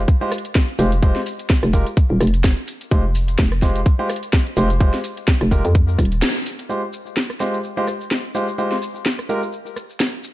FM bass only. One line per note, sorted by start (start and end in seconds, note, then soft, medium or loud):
0.79 1.14 F1 loud
1.63 1.85 F1 loud
2.10 2.19 D#1 medium
2.21 2.55 F1 loud
2.91 3.37 F1 loud
3.39 3.84 F1 loud
4.57 4.92 F1 medium
5.41 5.63 F1 medium
5.65 5.97 F2 loud
5.99 6.22 D#1 loud